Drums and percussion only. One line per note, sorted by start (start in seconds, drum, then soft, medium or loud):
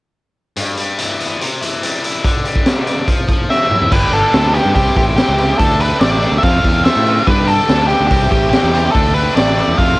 0.56 closed hi-hat medium
0.77 closed hi-hat soft
0.99 closed hi-hat medium
1.20 closed hi-hat soft
1.41 closed hi-hat medium
1.62 closed hi-hat medium
1.83 closed hi-hat medium
2.04 closed hi-hat medium
2.24 kick medium
2.24 closed hi-hat medium
2.45 closed hi-hat soft
2.56 kick medium
2.66 snare medium
2.66 closed hi-hat medium
2.87 closed hi-hat soft
3.08 kick medium
3.08 closed hi-hat medium
3.28 kick medium
3.28 closed hi-hat soft
3.50 snare soft
3.71 mid tom medium
3.82 floor tom medium
3.92 kick loud
3.92 crash medium
4.13 open hi-hat soft
4.34 snare loud
4.34 open hi-hat medium
4.55 open hi-hat soft
4.75 kick medium
4.75 open hi-hat soft
4.96 kick medium
4.96 open hi-hat soft
5.17 snare medium
5.17 open hi-hat medium
5.38 open hi-hat medium
5.59 kick medium
5.59 open hi-hat medium
5.80 open hi-hat soft
6.01 snare medium
6.01 open hi-hat medium
6.22 open hi-hat soft
6.43 kick medium
6.43 open hi-hat soft
6.64 kick medium
6.64 open hi-hat soft
6.85 snare medium
6.85 open hi-hat medium
7.07 open hi-hat soft
7.27 kick medium
7.27 open hi-hat medium
7.48 open hi-hat soft
7.69 snare medium
7.69 open hi-hat medium
7.90 open hi-hat soft
8.11 kick medium
8.11 open hi-hat medium
8.32 kick medium
8.32 open hi-hat soft
8.53 snare medium
8.53 open hi-hat medium
8.75 open hi-hat medium
8.95 kick medium
8.95 open hi-hat medium
9.16 open hi-hat soft
9.37 snare medium
9.37 open hi-hat medium
9.58 open hi-hat soft
9.79 kick medium
9.79 open hi-hat medium